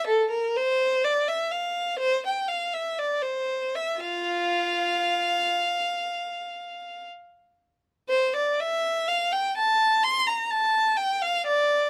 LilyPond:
\new Staff \with { instrumentName = "Violin" } { \time 4/4 \key f \major \tempo 4 = 61 << { a'16 bes'16 c''8 d''16 e''16 f''8 c''16 g''16 f''16 e''16 d''16 c''8 e''16 | f''2. r4 | c''16 d''16 e''8 f''16 g''16 a''8 c'''16 bes''16 a''8 g''16 f''16 d''8 | } \\ { r1 | f'4. r2 r8 | r1 | } >> }